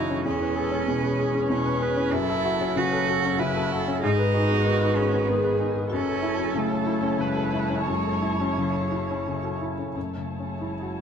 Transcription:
Already playing: double bass F#1, grand piano F#2 C#3 C#4 E4 A4, string section E3 C#4 C#5, cello D#4, viola F#4
0.08 grand piano C#4, marimba A4
0.23 double bass E1, grand piano E2, marimba C#4, cello C#4, viola G#4, string section B4
0.39 marimba E4, grand piano B4
0.55 grand piano G#4, viola A4, marimba B4
0.71 marimba C#4, grand piano C#4
0.86 grand piano B2, marimba E4, viola G#4
1.02 marimba G#4, grand piano B4
1.18 marimba C#4, grand piano G#4
1.33 grand piano C#4, marimba G#4
1.48 grand piano B2, cello C#4, marimba E4, viola C#5
1.65 marimba C#4, grand piano B4
1.81 grand piano G#4, marimba B4, viola B4
1.97 grand piano C#4, marimba E4
2.13 double bass F#1, grand piano F#2, cello E4, string section F#4 A4, marimba F#4, viola A4
2.28 marimba A4, grand piano A4
2.44 grand piano F#4, marimba E5
2.60 grand piano C#4, marimba F#4
2.75 grand piano C#3, cello F#4, marimba A4, viola B4
2.90 grand piano A4, marimba C#5
3.06 marimba F#4, grand piano F#4, viola A4
3.22 grand piano C#4, marimba C#5
3.38 grand piano C#3, cello E4, marimba A4, viola B4
3.54 marimba F#4, grand piano A4
3.70 grand piano F#4, viola A4, marimba E5
3.86 grand piano C#4, marimba A4
4.02 double bass G#1, grand piano G#2, cello D#4, string section D#4 G#4 B4, marimba G#4, viola G#4
4.17 marimba B4, grand piano B4
4.32 grand piano D#4, viola F#4, marimba G#5
4.48 grand piano B3, marimba G#4
4.64 grand piano D#3, marimba B4
4.81 grand piano B4
4.96 cello C#4, grand piano D#4, marimba G#4
5.11 grand piano B3, marimba D#5
5.27 grand piano D#3, cello B3, viola G#4, marimba B4
5.43 marimba G#4, grand piano B4
5.58 grand piano D#4, marimba G#5
5.74 grand piano B3, marimba B4
5.90 double bass F#1, grand piano F#2, cello C#4, string section E4 C#5 A5, marimba F#4, viola A4
6.05 marimba A4, grand piano A4
6.21 grand piano E4, marimba E5
6.37 grand piano C#4, marimba F#4
6.53 grand piano C#3, cello A3, marimba A4
6.70 grand piano A4, marimba C#5
6.85 grand piano E4, marimba F#4
7.01 grand piano C#4, marimba C#5
7.18 grand piano C#3, marimba A4, viola B4
7.23 cello G#3
7.35 marimba F#4, grand piano A4
7.52 grand piano E4, marimba E5
7.69 grand piano C#4, marimba A4
7.86 grand piano F#2, cello G#3, marimba F#4, viola C#5
8.04 marimba A4, grand piano A4
8.21 grand piano E4, marimba E5
8.39 grand piano C#4, marimba F#4
8.57 grand piano C#3, cello F#3, marimba A4
8.74 grand piano A4, marimba C#5
8.91 grand piano E4, marimba F#4
9.08 grand piano C#4, marimba C#5
9.26 grand piano C#3, marimba A4
9.43 marimba F#4, grand piano A4
9.61 grand piano E4, marimba E5
9.78 grand piano C#4, marimba A4
9.93 double bass F#1, grand piano F#2, cello A3, string section E4 C#5 A5
10.17 grand piano C#3
10.40 grand piano C#4
10.61 cello G#3, grand piano E4
10.83 grand piano F#4

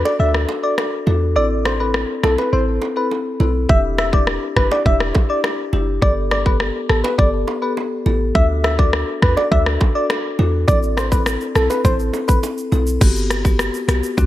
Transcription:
Already playing: marimba D4 F#4 A4
0.05 soft synth lead D5, high bongo
0.19 808-style bass D2, marimba D4 F#4 A4, soft synth lead E5
0.34 cross-stick
0.49 high bongo
0.63 marimba D4 F#4 A4, soft synth lead D5
0.78 cross-stick, high bongo
1.07 808-style bass E2, marimba D4 F#4 A4, low bongo
1.36 808-style bass A1, marimba C4 E4 A4, soft synth lead D5
1.65 soft synth lead C5, cross-stick, high bongo
1.80 marimba C4 E4 A4, soft synth lead B4
1.94 cross-stick
2.23 808-style bass B1, marimba C4 E4 A4, soft synth lead A4, cross-stick, low bongo
2.38 soft synth lead B4, high bongo
2.53 808-style bass A1, marimba C4 E4 A4, soft synth lead C5
2.82 high bongo
2.96 marimba C4 E4 A4, soft synth lead B4
3.11 high bongo
3.40 808-style bass B1, marimba C4 E4 A4, low bongo
3.69 808-style bass E1, marimba D4 E4 G4, soft synth lead E5, kick
3.98 soft synth lead E5, cross-stick, high bongo
4.13 marimba D4 E4 G4, soft synth lead D5, kick
4.27 cross-stick
4.56 808-style bass F#1, marimba D4 E4 G4, soft synth lead B4, kick, cross-stick
4.71 soft synth lead D5, high bongo
4.86 808-style bass E1, marimba D4 E4 G4, soft synth lead E5, kick
5.00 cross-stick
5.15 kick, high bongo
5.29 marimba D4 E4 G4, soft synth lead D5
5.44 cross-stick, high bongo
5.73 808-style bass F#1, marimba D4 E4 G4, low bongo
6.02 808-style bass G1, marimba B3 G4 A4, soft synth lead D5, kick
6.31 soft synth lead D5, cross-stick, high bongo
6.46 marimba B3 G4 A4, soft synth lead B4, kick
6.60 cross-stick
6.89 808-style bass A1, marimba B3 G4 A4, soft synth lead A4, cross-stick
7.04 soft synth lead B4, high bongo
7.18 808-style bass G1, marimba B3 G4 A4, soft synth lead D5, kick
7.48 high bongo
7.62 marimba B3 G4 A4, soft synth lead B4
7.77 high bongo
8.06 808-style bass A1, marimba B3 G4 A4, low bongo
8.35 808-style bass D2, marimba D4 F#4 A4, soft synth lead E5, kick
8.64 soft synth lead E5, cross-stick, high bongo
8.79 marimba D4 F#4 A4, soft synth lead D5, kick
8.93 cross-stick
9.22 808-style bass E2, marimba D4 F#4 A4, soft synth lead B4, kick, cross-stick
9.37 soft synth lead D5, high bongo
9.51 808-style bass D2, marimba D4 F#4 A4, soft synth lead E5, kick
9.66 cross-stick
9.81 kick, high bongo
9.95 marimba D4 F#4 A4, soft synth lead D5
10.10 cross-stick, high bongo
10.39 808-style bass E2, marimba D4 F#4 A4, low bongo
10.68 808-style bass A1, marimba C4 E4 A4, soft synth lead D5, kick, shaker
10.83 shaker
10.97 soft synth lead C5, cross-stick, high bongo, shaker
11.12 marimba C4 E4 A4, soft synth lead B4, kick, shaker
11.26 cross-stick, shaker
11.41 shaker
11.55 808-style bass B1, marimba C4 E4 A4, soft synth lead A4, cross-stick, shaker
11.70 soft synth lead B4, high bongo, shaker
11.85 808-style bass A1, marimba C4 E4 A4, soft synth lead C5, kick, shaker
11.99 shaker
12.13 high bongo, shaker
12.28 marimba C4 E4 A4, soft synth lead B4, kick, shaker
12.43 high bongo, shaker
12.58 shaker
12.72 808-style bass B1, marimba C4 E4 A4, low bongo, shaker
12.87 shaker
13.01 808-style bass G1, marimba B3 F#4 G4, kick, crash, shaker
13.16 shaker
13.30 cross-stick, closed hi-hat, shaker
13.45 marimba B3 F#4 G4, kick, shaker
13.59 cross-stick, shaker
13.74 shaker
13.88 808-style bass B1, marimba B3 F#4 G4, cross-stick, closed hi-hat, shaker
14.03 shaker
14.17 808-style bass D2, marimba C4 D4 F#4, kick, shaker

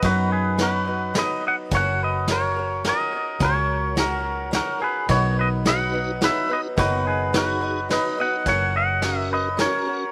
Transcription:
0.02 fingered electric bass F#2, steel-string acoustic guitar B2 D#3 F#3 B3 D#4 B4, clean electric guitar F#4 B4, kick, ride
0.32 clean electric guitar G#4 B4
0.58 steel-string acoustic guitar F#3 B3 D#4 B4, snare, ride
0.62 clean electric guitar F#4 B4
0.85 steel-string acoustic guitar F#3 B3 D#4 B4
1.14 steel-string acoustic guitar F#3 B3 D#4 B4, snare, ride
1.18 clean electric guitar B4 D#5
1.47 clean electric guitar D#5 F#5
1.71 fingered electric bass F#1, steel-string acoustic guitar F#3 C#4 F#4 A#4, clean electric guitar C#5, kick, ride
1.77 clean electric guitar F#5
2.03 clean electric guitar B4 D#5
2.27 steel-string acoustic guitar F#3 C#4 F#4 A#4, clean electric guitar A#4, snare, ride
2.33 clean electric guitar C#5
2.56 steel-string acoustic guitar C#4 F#4 A#4
2.84 steel-string acoustic guitar F#3 C#4 F#4 A#4, clean electric guitar A#4, snare, ride
2.89 clean electric guitar D#5
3.13 steel-string acoustic guitar C#4 F#4 A#4
3.40 fingered electric bass C#2, steel-string acoustic guitar F#3 C#4 F#4 A#4, clean electric guitar A#4, kick, ride
3.45 clean electric guitar C#5
3.96 steel-string acoustic guitar F#3 C#4 F#4 A#4, clean electric guitar F#4, snare, ride
4.00 clean electric guitar A#4
4.51 steel-string acoustic guitar F#3 C#4 F#4 A#4, clean electric guitar F#4, snare, ride
4.56 clean electric guitar A#4
4.80 steel-string acoustic guitar C#4 F#4 A#4, clean electric guitar G#4
4.84 clean electric guitar B4
5.08 fingered electric bass B1, steel-string acoustic guitar B2 D#3 F#3 B3 D#4 B4, clean electric guitar F#4 C#5, kick, ride
5.39 clean electric guitar B4 D#5
5.65 steel-string acoustic guitar F#3 B3 D#4 B4, tonewheel organ D#4 F#4 B4, clean electric guitar D#5, snare, ride
5.69 clean electric guitar F#5
5.92 steel-string acoustic guitar F#3 B3 D#4 B4
6.21 steel-string acoustic guitar F#3 B3 D#4 B4, tonewheel organ D#4 F#4 B4, clean electric guitar B4, snare, ride
6.25 clean electric guitar E5
6.48 steel-string acoustic guitar F#3 B3 D#4 B4, clean electric guitar B4
6.53 clean electric guitar D#5
6.77 fingered electric bass F#1, steel-string acoustic guitar B2 D#3 F#3 B3 D#4 B4, clean electric guitar F#4, kick, ride
6.81 clean electric guitar B4
7.07 clean electric guitar G#4 B4
7.33 steel-string acoustic guitar F#3 B3 D#4 B4, tonewheel organ D#4 F#4 G#4, clean electric guitar F#4, snare, ride
7.38 clean electric guitar B4
7.61 steel-string acoustic guitar F#3 B3 D#4 B4
7.89 steel-string acoustic guitar F#3 B3 D#4 B4, tonewheel organ D#4 F#4 B4, clean electric guitar B4 D#5, snare, ride
8.17 steel-string acoustic guitar F#3 B3 D#4 B4, clean electric guitar D#5
8.21 clean electric guitar F#5
8.46 fingered electric bass F#1, steel-string acoustic guitar F#3 C#4 F#4 A#4, clean electric guitar C#5 F#5, kick, ride
8.76 clean electric guitar D#5 F#5
9.02 steel-string acoustic guitar F#3 C#4 F#4 A#4, tonewheel organ C#4 F#4 A#4, snare, ride
9.17 clean electric guitar E5
9.33 clean electric guitar B4 D#5
9.57 steel-string acoustic guitar F#3 C#4 F#4 A#4, tonewheel organ C#4 F#4 A#4, clean electric guitar A#4, snare, ride
9.61 clean electric guitar C#5
9.86 steel-string acoustic guitar C#4 F#4 A#4

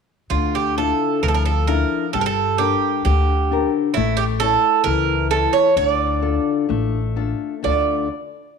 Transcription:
0.30 upright bass D2, nylon-string guitar D3, bouzouki F4
0.55 bouzouki G4
0.77 nylon-string guitar D4 E4 F4, bouzouki A4
1.23 upright bass D2, nylon-string guitar F3, bouzouki A#4
1.28 bouzouki A4
1.34 bouzouki A#4
1.45 bouzouki A4
1.67 nylon-string guitar D4 E4 F4, bouzouki A#4
2.13 upright bass G1, nylon-string guitar G3, bouzouki A4
2.21 bouzouki A#4
2.26 bouzouki A4
2.58 nylon-string guitar D4 G4 A#4, bouzouki G4
3.05 upright bass D2, nylon-string guitar D3, bouzouki G4
3.51 nylon-string guitar D4 G4 A#4
3.94 upright bass A1, nylon-string guitar A3, bouzouki E4
4.17 bouzouki G4
4.40 nylon-string guitar E4 C#5, bouzouki A4
4.84 upright bass C#2, nylon-string guitar E3, bouzouki A#4
5.31 nylon-string guitar E4 A4 C#5, bouzouki A4
5.53 bouzouki C#5
5.76 upright bass D2, nylon-string guitar D3, bouzouki D5
6.22 nylon-string guitar D4 F4 A4
6.69 upright bass A1, nylon-string guitar A3
7.16 nylon-string guitar D4 F4 A4
7.63 upright bass D2, nylon-string guitar D3 A3 D4 F4 A4, bouzouki D5

